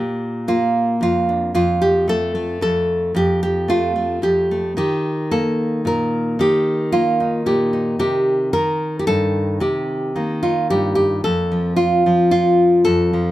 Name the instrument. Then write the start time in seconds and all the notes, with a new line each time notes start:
nylon-string guitar
Already playing: A#2 F4 G4
0.48 A#3 F4
1.01 F2 F4
1.29 D4
1.55 F2 F4
1.82 G4
2.08 A3 A4
2.35 A3
2.61 F2 A4
3.15 F2 G4
3.43 G4
3.68 A3 F4
3.96 A3
4.22 F2 G4
4.51 A3
4.77 D#3 G4
5.31 A#3 A4
5.85 A#2 A#4
6.39 D#3 G4
6.92 A#3 F4
7.20 D#4
7.46 A#2 G4
7.73 D#4
7.99 C3 G4
8.53 D#3 A#4
8.99 G4
9.07 G2 A4
9.60 C3 G4
10.16 D#3 A#3
10.43 D#4 F4
10.70 G2 G4
10.95 G4
11.24 F2 A4
11.52 F3
11.76 F4
12.06 F3
12.31 F4
12.85 F2 A4
13.13 F3